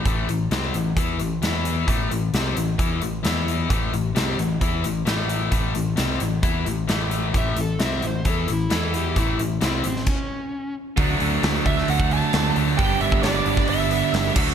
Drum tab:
CC |----------------|----------------|----------------|----------------|
HH |x-x-x-x-x-x-x-x-|x-x-x-x-x-x-x-x-|x-x-x-x-x-x-x-x-|x-x-x-x-x-x-x-x-|
SD |----o-------o---|----o-------o---|----o-------o---|----o-------o---|
BD |o-------o-------|o-------o-------|o-------o-------|o-------o-------|

CC |----------------|--------x-------|----------------|--------------x-|
HH |x-x-x-x-x-x-x-x-|x-x-x-x---------|o-o-o-o-o-o-o-o-|o-o-o-o-o-o-o---|
SD |----o-------o---|----o--o--------|----o--o----o---|----o--o----o---|
BD |o-------o-------|o-------o-------|o-----o--o------|o--o---o------o-|